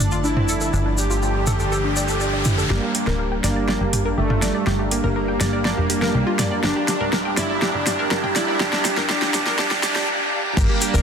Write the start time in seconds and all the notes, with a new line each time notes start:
Already playing: G1 G2 D3 F3 G3 A3 D4 D5 A5, riser
0.11 F4, shaker
0.24 D4 E4, shaker
0.37 C4, mid tom
0.49 A4, shaker
0.61 A4, shaker
0.73 G1 D4 C5, shaker
0.86 D4
0.98 D4 G4, shaker
1.10 F4, shaker
1.22 F4, shaker
1.35 D5
1.47 A4, mid tom, shaker
1.60 A4, shaker
1.72 A4, shaker
1.84 D4
1.96 D5, shaker
2.08 A4, shaker
2.20 D5, shaker
2.33 D5
2.45 E4, mid tom, shaker
2.58 A4, shaker
2.70 G1 G2 G3 A#3 D4 G4 F5 A#5, snare, riser
2.83 G4
2.95 G4, open hi-hat
3.07 D1 A#4, snare
3.19 A#4
3.32 G5
3.44 G1 G3 A#3 D4 G4 D5, snare, open hi-hat
3.56 D5
3.68 D5, snare
3.81 G1 G4
3.93 G3 D4 G4, mid tom, open hi-hat
4.05 A#4
4.18 G1 A3 G4
4.30 F4, mid tom
4.42 D5, snare, open hi-hat
4.55 D5
4.67 G1 G4, snare
4.79 G4
4.91 A#3 G4, open hi-hat
5.04 G1 A#4
5.16 A#4
5.28 G5
5.41 G1 G3 D4 G4 D5, snare, open hi-hat
5.53 D5
5.65 D5, snare
5.78 F1 G4
5.90 G3 D4 G4, open hi-hat
6.02 A#4, snare
6.14 C2 G4
6.27 F4
6.39 D5, snare, mid tom, open hi-hat
6.51 D5
6.63 G1 G3 D4 G4, snare
6.76 G4
6.88 G4, snare, open hi-hat
7.01 D1 A#4
7.13 A#4, snare
7.25 G5
7.37 G1 G3 D4 E4 G4 D5, snare, open hi-hat
7.50 D5
7.62 G3 D4 G4, snare
7.74 G1 G4
7.87 G4, snare, mid tom, open hi-hat
7.99 A#4
8.11 G1 A#4, snare
8.24 G5, mid tom
8.36 G3 D4 E4 G4 D5, snare, open hi-hat
8.48 D5
8.60 G1 G3 D4 G4, snare
8.73 G4, snare
8.85 G4, snare, open hi-hat
8.97 G1 A#4, snare
9.10 G3 D4 G4, snare
9.22 G4, snare
9.34 G1 G4, snare, open hi-hat
9.46 A#4, snare
9.59 G3 D4 G4, snare
9.71 F1 G4, snare
9.83 G3 D4 G4, snare, open hi-hat
9.96 G4, snare
10.57 G1 G3 A#3 D4 G4 G5 A#5, kick, crash, shaker
10.69 G4
10.81 G4, open hi-hat, shaker
10.94 D1 A#4, shaker